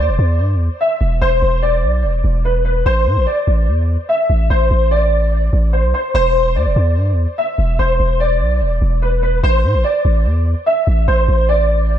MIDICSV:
0, 0, Header, 1, 3, 480
1, 0, Start_track
1, 0, Key_signature, 0, "minor"
1, 0, Tempo, 410959
1, 1418, Time_signature, 4, 2, 24, 8
1, 14001, End_track
2, 0, Start_track
2, 0, Title_t, "Upright piano"
2, 0, Program_c, 0, 0
2, 0, Note_on_c, 0, 74, 85
2, 893, Note_off_c, 0, 74, 0
2, 942, Note_on_c, 0, 76, 82
2, 1392, Note_off_c, 0, 76, 0
2, 1419, Note_on_c, 0, 72, 106
2, 1870, Note_off_c, 0, 72, 0
2, 1898, Note_on_c, 0, 74, 88
2, 2811, Note_off_c, 0, 74, 0
2, 2859, Note_on_c, 0, 71, 81
2, 3076, Note_off_c, 0, 71, 0
2, 3094, Note_on_c, 0, 71, 77
2, 3319, Note_off_c, 0, 71, 0
2, 3340, Note_on_c, 0, 72, 108
2, 3791, Note_off_c, 0, 72, 0
2, 3815, Note_on_c, 0, 74, 80
2, 4730, Note_off_c, 0, 74, 0
2, 4776, Note_on_c, 0, 76, 80
2, 5228, Note_off_c, 0, 76, 0
2, 5258, Note_on_c, 0, 72, 93
2, 5709, Note_off_c, 0, 72, 0
2, 5737, Note_on_c, 0, 74, 89
2, 6651, Note_off_c, 0, 74, 0
2, 6693, Note_on_c, 0, 72, 72
2, 6918, Note_off_c, 0, 72, 0
2, 6939, Note_on_c, 0, 72, 83
2, 7161, Note_off_c, 0, 72, 0
2, 7180, Note_on_c, 0, 72, 122
2, 7630, Note_off_c, 0, 72, 0
2, 7661, Note_on_c, 0, 74, 86
2, 8573, Note_off_c, 0, 74, 0
2, 8621, Note_on_c, 0, 76, 82
2, 9071, Note_off_c, 0, 76, 0
2, 9100, Note_on_c, 0, 72, 99
2, 9551, Note_off_c, 0, 72, 0
2, 9579, Note_on_c, 0, 74, 90
2, 10492, Note_off_c, 0, 74, 0
2, 10538, Note_on_c, 0, 71, 79
2, 10756, Note_off_c, 0, 71, 0
2, 10773, Note_on_c, 0, 71, 78
2, 10998, Note_off_c, 0, 71, 0
2, 11020, Note_on_c, 0, 72, 111
2, 11470, Note_off_c, 0, 72, 0
2, 11495, Note_on_c, 0, 74, 82
2, 12410, Note_off_c, 0, 74, 0
2, 12456, Note_on_c, 0, 76, 77
2, 12908, Note_off_c, 0, 76, 0
2, 12940, Note_on_c, 0, 72, 95
2, 13390, Note_off_c, 0, 72, 0
2, 13418, Note_on_c, 0, 74, 89
2, 14001, Note_off_c, 0, 74, 0
2, 14001, End_track
3, 0, Start_track
3, 0, Title_t, "808-style bass"
3, 0, Program_c, 1, 38
3, 99, Note_on_c, 1, 28, 96
3, 213, Note_off_c, 1, 28, 0
3, 218, Note_on_c, 1, 40, 105
3, 459, Note_on_c, 1, 43, 102
3, 476, Note_off_c, 1, 40, 0
3, 639, Note_on_c, 1, 40, 98
3, 656, Note_off_c, 1, 43, 0
3, 809, Note_off_c, 1, 40, 0
3, 1178, Note_on_c, 1, 28, 103
3, 1409, Note_off_c, 1, 28, 0
3, 1418, Note_on_c, 1, 28, 109
3, 1649, Note_off_c, 1, 28, 0
3, 1658, Note_on_c, 1, 28, 103
3, 2137, Note_on_c, 1, 35, 99
3, 2155, Note_off_c, 1, 28, 0
3, 2378, Note_on_c, 1, 28, 96
3, 2396, Note_off_c, 1, 35, 0
3, 2606, Note_off_c, 1, 28, 0
3, 2618, Note_on_c, 1, 28, 108
3, 3309, Note_off_c, 1, 28, 0
3, 3338, Note_on_c, 1, 33, 103
3, 3578, Note_on_c, 1, 45, 100
3, 3595, Note_off_c, 1, 33, 0
3, 3697, Note_on_c, 1, 33, 105
3, 3715, Note_off_c, 1, 45, 0
3, 3812, Note_off_c, 1, 33, 0
3, 4058, Note_on_c, 1, 33, 108
3, 4298, Note_on_c, 1, 40, 98
3, 4316, Note_off_c, 1, 33, 0
3, 4640, Note_off_c, 1, 40, 0
3, 5018, Note_on_c, 1, 33, 106
3, 5249, Note_off_c, 1, 33, 0
3, 5258, Note_on_c, 1, 33, 109
3, 5489, Note_off_c, 1, 33, 0
3, 5498, Note_on_c, 1, 33, 103
3, 6420, Note_off_c, 1, 33, 0
3, 6459, Note_on_c, 1, 33, 106
3, 6817, Note_on_c, 1, 35, 96
3, 6835, Note_off_c, 1, 33, 0
3, 6932, Note_off_c, 1, 35, 0
3, 7178, Note_on_c, 1, 28, 104
3, 7658, Note_on_c, 1, 40, 98
3, 7675, Note_off_c, 1, 28, 0
3, 7778, Note_on_c, 1, 28, 100
3, 7795, Note_off_c, 1, 40, 0
3, 7892, Note_off_c, 1, 28, 0
3, 7898, Note_on_c, 1, 40, 103
3, 8138, Note_on_c, 1, 43, 99
3, 8156, Note_off_c, 1, 40, 0
3, 8318, Note_on_c, 1, 40, 97
3, 8336, Note_off_c, 1, 43, 0
3, 8489, Note_off_c, 1, 40, 0
3, 8858, Note_on_c, 1, 28, 103
3, 9088, Note_off_c, 1, 28, 0
3, 9098, Note_on_c, 1, 28, 107
3, 9329, Note_off_c, 1, 28, 0
3, 9338, Note_on_c, 1, 28, 108
3, 9818, Note_on_c, 1, 35, 101
3, 9835, Note_off_c, 1, 28, 0
3, 10057, Note_on_c, 1, 28, 100
3, 10075, Note_off_c, 1, 35, 0
3, 10286, Note_off_c, 1, 28, 0
3, 10298, Note_on_c, 1, 28, 105
3, 10989, Note_off_c, 1, 28, 0
3, 11019, Note_on_c, 1, 33, 108
3, 11259, Note_on_c, 1, 45, 100
3, 11276, Note_off_c, 1, 33, 0
3, 11379, Note_on_c, 1, 33, 102
3, 11396, Note_off_c, 1, 45, 0
3, 11492, Note_off_c, 1, 33, 0
3, 11738, Note_on_c, 1, 33, 105
3, 11978, Note_on_c, 1, 40, 99
3, 11996, Note_off_c, 1, 33, 0
3, 12320, Note_off_c, 1, 40, 0
3, 12699, Note_on_c, 1, 33, 104
3, 12929, Note_off_c, 1, 33, 0
3, 12939, Note_on_c, 1, 33, 109
3, 13169, Note_off_c, 1, 33, 0
3, 13178, Note_on_c, 1, 33, 103
3, 14001, Note_off_c, 1, 33, 0
3, 14001, End_track
0, 0, End_of_file